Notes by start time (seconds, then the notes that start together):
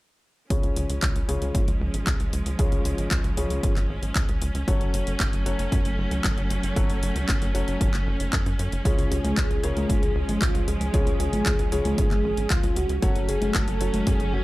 0.50 C#2 C#3 F3 G#3 C#4 F4 G#4 C#5, kick, closed hi-hat
0.63 C#2, closed hi-hat
0.76 C#2, closed hi-hat
0.90 C#2, closed hi-hat
1.02 C#2, kick, clap, closed hi-hat
1.16 C#2, closed hi-hat
1.28 C#2 C#3 C#4 F4 G#4 C#5, closed hi-hat
1.42 C#2, closed hi-hat
1.55 G#1, kick, closed hi-hat
1.68 C#2, closed hi-hat
1.81 C#2
1.94 G#1, closed hi-hat
2.07 C#2, kick, clap, closed hi-hat
2.20 C#2, closed hi-hat
2.33 C#2, closed hi-hat
2.46 C#2, closed hi-hat
2.59 C#2 C#3 C#4 F4 G#4 C#5, kick, closed hi-hat
2.72 C#2, closed hi-hat
2.85 C#2, closed hi-hat
2.98 G#1, closed hi-hat
3.11 C#2, kick, clap, closed hi-hat
3.24 C#2, closed hi-hat
3.37 C#2 C#3 C#4 F4 G#4 C#5, closed hi-hat
3.50 C#2, closed hi-hat
3.63 G#1, kick, closed hi-hat
3.76 G#1, clap, closed hi-hat
3.89 G#1
4.02 G#1, closed hi-hat
4.16 C#2, kick, clap, closed hi-hat
4.29 C#2, closed hi-hat
4.42 C#2, closed hi-hat
4.55 C#2, closed hi-hat
4.68 F#1 F#3 A3 C#4 F#4 A4 C#5, kick, closed hi-hat
4.81 F#1, closed hi-hat
4.94 F#1, closed hi-hat
5.07 F#1, closed hi-hat
5.20 F#1, kick, clap, closed hi-hat
5.33 F#1, closed hi-hat
5.46 F#1 F#3 C#4 F#4 A4 C#5, closed hi-hat
5.59 F#1, closed hi-hat
5.72 F#2, kick, closed hi-hat
5.85 F#1, closed hi-hat
5.98 F#1
6.11 C#2, closed hi-hat
6.24 F#1, kick, clap, closed hi-hat
6.37 F#1, closed hi-hat
6.50 F#1, closed hi-hat
6.63 F#1, closed hi-hat
6.76 F#1 F#3 C#4 F#4 A4 C#5, kick, closed hi-hat
6.89 F#1, closed hi-hat
7.03 F#1, closed hi-hat
7.16 C#2, closed hi-hat
7.29 F#1, kick, clap, closed hi-hat
7.42 F#1, closed hi-hat
7.55 F#1 F#3 C#4 F#4 A4 C#5, closed hi-hat
7.68 F#1, closed hi-hat
7.81 F#1, kick, closed hi-hat
7.94 F#1, clap, closed hi-hat
8.07 F#1
8.20 F#1, closed hi-hat
8.33 F#2, kick, clap, closed hi-hat
8.46 F#2, closed hi-hat
8.59 F#2, closed hi-hat
8.72 F#1, closed hi-hat
8.85 C#2 C#3 F3 G#3 C#4 F4 G#4 C#5, kick, closed hi-hat
8.98 C#2, closed hi-hat
9.11 C#2 G#4, closed hi-hat
9.24 C#2, closed hi-hat, high conga
9.37 C#2, kick, clap, closed hi-hat
9.50 C#2, closed hi-hat
9.63 C#2 C#3 C#4 F4 G#4 A#4 C#5, closed hi-hat
9.76 C#2, closed hi-hat, high conga
9.89 G#1 G#4, kick, closed hi-hat
10.02 C#2, closed hi-hat
10.15 C#2
10.28 G#1, closed hi-hat, high conga
10.41 C#2 F4, kick, clap, closed hi-hat
10.54 C#2, closed hi-hat
10.67 C#2 G#4, closed hi-hat
10.81 C#2, closed hi-hat
10.94 C#2 C#3 C#4 F4 G#4 C#5, kick, closed hi-hat
11.07 C#2, closed hi-hat
11.20 C#2 G#4, closed hi-hat
11.33 G#1, closed hi-hat, high conga
11.46 C#2, kick, clap, closed hi-hat
11.59 C#2, closed hi-hat
11.72 C#2 C#3 C#4 F4 G#4 C#5, closed hi-hat
11.85 C#2, closed hi-hat, high conga
11.98 G#1, kick, closed hi-hat
12.11 G#1, clap, closed hi-hat, high conga
12.24 G#1
12.37 G#1, closed hi-hat
12.50 C#2 F4, kick, clap, closed hi-hat
12.63 C#2, closed hi-hat
12.76 C#2 F#4, closed hi-hat
12.89 C#2, closed hi-hat
13.02 F#1 F#3 A3 C#4 F#4 A4 C#5, kick, closed hi-hat
13.16 F#1, closed hi-hat
13.29 F#1 G#4, closed hi-hat
13.42 F#1, closed hi-hat, high conga
13.54 F#1 A4, kick, clap, closed hi-hat
13.68 F#1, closed hi-hat
13.81 F#1 F#3 C#4 F#4 A4 C#5, closed hi-hat
13.94 F#1, closed hi-hat, high conga
14.07 F#2 G#4, kick, closed hi-hat
14.20 F#1, closed hi-hat
14.32 F#1 F#4